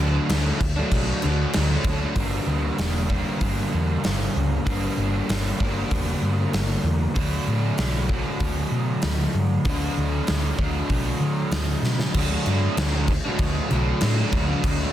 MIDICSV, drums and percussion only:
0, 0, Header, 1, 2, 480
1, 0, Start_track
1, 0, Key_signature, 2, "major"
1, 0, Tempo, 623053
1, 1670, Time_signature, 4, 2, 24, 8
1, 11498, End_track
2, 0, Start_track
2, 0, Title_t, "Drums"
2, 226, Note_on_c, 9, 49, 96
2, 234, Note_on_c, 9, 38, 126
2, 304, Note_off_c, 9, 49, 0
2, 311, Note_off_c, 9, 38, 0
2, 467, Note_on_c, 9, 36, 90
2, 469, Note_on_c, 9, 49, 68
2, 544, Note_off_c, 9, 36, 0
2, 546, Note_off_c, 9, 49, 0
2, 706, Note_on_c, 9, 36, 113
2, 707, Note_on_c, 9, 49, 89
2, 783, Note_off_c, 9, 36, 0
2, 784, Note_off_c, 9, 49, 0
2, 940, Note_on_c, 9, 49, 68
2, 1017, Note_off_c, 9, 49, 0
2, 1181, Note_on_c, 9, 49, 93
2, 1189, Note_on_c, 9, 38, 121
2, 1258, Note_off_c, 9, 49, 0
2, 1266, Note_off_c, 9, 38, 0
2, 1419, Note_on_c, 9, 49, 71
2, 1422, Note_on_c, 9, 36, 98
2, 1496, Note_off_c, 9, 49, 0
2, 1499, Note_off_c, 9, 36, 0
2, 1661, Note_on_c, 9, 46, 52
2, 1663, Note_on_c, 9, 36, 112
2, 1738, Note_off_c, 9, 46, 0
2, 1740, Note_off_c, 9, 36, 0
2, 2145, Note_on_c, 9, 46, 53
2, 2153, Note_on_c, 9, 38, 109
2, 2222, Note_off_c, 9, 46, 0
2, 2230, Note_off_c, 9, 38, 0
2, 2387, Note_on_c, 9, 36, 86
2, 2465, Note_off_c, 9, 36, 0
2, 2626, Note_on_c, 9, 46, 51
2, 2628, Note_on_c, 9, 36, 98
2, 2703, Note_off_c, 9, 46, 0
2, 2705, Note_off_c, 9, 36, 0
2, 3111, Note_on_c, 9, 46, 56
2, 3118, Note_on_c, 9, 38, 107
2, 3188, Note_off_c, 9, 46, 0
2, 3195, Note_off_c, 9, 38, 0
2, 3595, Note_on_c, 9, 36, 106
2, 3595, Note_on_c, 9, 46, 57
2, 3672, Note_off_c, 9, 36, 0
2, 3672, Note_off_c, 9, 46, 0
2, 4077, Note_on_c, 9, 46, 60
2, 4085, Note_on_c, 9, 38, 114
2, 4154, Note_off_c, 9, 46, 0
2, 4162, Note_off_c, 9, 38, 0
2, 4317, Note_on_c, 9, 36, 90
2, 4394, Note_off_c, 9, 36, 0
2, 4553, Note_on_c, 9, 46, 55
2, 4556, Note_on_c, 9, 36, 99
2, 4630, Note_off_c, 9, 46, 0
2, 4633, Note_off_c, 9, 36, 0
2, 5034, Note_on_c, 9, 46, 56
2, 5041, Note_on_c, 9, 38, 106
2, 5111, Note_off_c, 9, 46, 0
2, 5118, Note_off_c, 9, 38, 0
2, 5513, Note_on_c, 9, 46, 55
2, 5517, Note_on_c, 9, 36, 107
2, 5590, Note_off_c, 9, 46, 0
2, 5594, Note_off_c, 9, 36, 0
2, 5991, Note_on_c, 9, 46, 52
2, 5999, Note_on_c, 9, 38, 113
2, 6069, Note_off_c, 9, 46, 0
2, 6076, Note_off_c, 9, 38, 0
2, 6235, Note_on_c, 9, 36, 86
2, 6312, Note_off_c, 9, 36, 0
2, 6471, Note_on_c, 9, 46, 47
2, 6475, Note_on_c, 9, 36, 107
2, 6548, Note_off_c, 9, 46, 0
2, 6552, Note_off_c, 9, 36, 0
2, 6947, Note_on_c, 9, 46, 53
2, 6955, Note_on_c, 9, 38, 110
2, 7024, Note_off_c, 9, 46, 0
2, 7032, Note_off_c, 9, 38, 0
2, 7433, Note_on_c, 9, 46, 55
2, 7437, Note_on_c, 9, 36, 106
2, 7510, Note_off_c, 9, 46, 0
2, 7514, Note_off_c, 9, 36, 0
2, 7913, Note_on_c, 9, 46, 56
2, 7921, Note_on_c, 9, 38, 118
2, 7990, Note_off_c, 9, 46, 0
2, 7998, Note_off_c, 9, 38, 0
2, 8156, Note_on_c, 9, 36, 89
2, 8233, Note_off_c, 9, 36, 0
2, 8394, Note_on_c, 9, 46, 54
2, 8397, Note_on_c, 9, 36, 99
2, 8471, Note_off_c, 9, 46, 0
2, 8474, Note_off_c, 9, 36, 0
2, 8871, Note_on_c, 9, 46, 58
2, 8879, Note_on_c, 9, 38, 111
2, 8948, Note_off_c, 9, 46, 0
2, 8956, Note_off_c, 9, 38, 0
2, 9120, Note_on_c, 9, 38, 61
2, 9197, Note_off_c, 9, 38, 0
2, 9240, Note_on_c, 9, 38, 85
2, 9317, Note_off_c, 9, 38, 0
2, 9355, Note_on_c, 9, 49, 85
2, 9355, Note_on_c, 9, 57, 121
2, 9358, Note_on_c, 9, 36, 112
2, 9432, Note_off_c, 9, 49, 0
2, 9432, Note_off_c, 9, 57, 0
2, 9435, Note_off_c, 9, 36, 0
2, 9597, Note_on_c, 9, 49, 65
2, 9674, Note_off_c, 9, 49, 0
2, 9839, Note_on_c, 9, 49, 88
2, 9847, Note_on_c, 9, 38, 123
2, 9917, Note_off_c, 9, 49, 0
2, 9924, Note_off_c, 9, 38, 0
2, 10075, Note_on_c, 9, 49, 68
2, 10078, Note_on_c, 9, 36, 89
2, 10152, Note_off_c, 9, 49, 0
2, 10155, Note_off_c, 9, 36, 0
2, 10312, Note_on_c, 9, 49, 81
2, 10317, Note_on_c, 9, 36, 110
2, 10389, Note_off_c, 9, 49, 0
2, 10394, Note_off_c, 9, 36, 0
2, 10558, Note_on_c, 9, 49, 64
2, 10635, Note_off_c, 9, 49, 0
2, 10791, Note_on_c, 9, 49, 90
2, 10798, Note_on_c, 9, 38, 117
2, 10868, Note_off_c, 9, 49, 0
2, 10875, Note_off_c, 9, 38, 0
2, 11035, Note_on_c, 9, 49, 69
2, 11038, Note_on_c, 9, 36, 95
2, 11112, Note_off_c, 9, 49, 0
2, 11115, Note_off_c, 9, 36, 0
2, 11278, Note_on_c, 9, 36, 122
2, 11280, Note_on_c, 9, 49, 95
2, 11355, Note_off_c, 9, 36, 0
2, 11357, Note_off_c, 9, 49, 0
2, 11498, End_track
0, 0, End_of_file